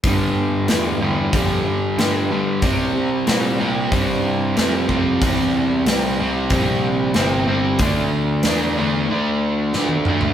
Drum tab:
HH |o---o---o---o---|o---o---o---o---|o---o---o---o---|o---o-----------|
SD |----o-------o---|----o-------o---|----o-------o---|----o-------o---|
T1 |----------------|----------------|----------------|-------------o--|
T2 |----------------|----------------|----------------|--------------o-|
FT |----------------|----------------|----------------|---------------o|
BD |o-------o-------|o-------o-----o-|o-------o-------|o---------------|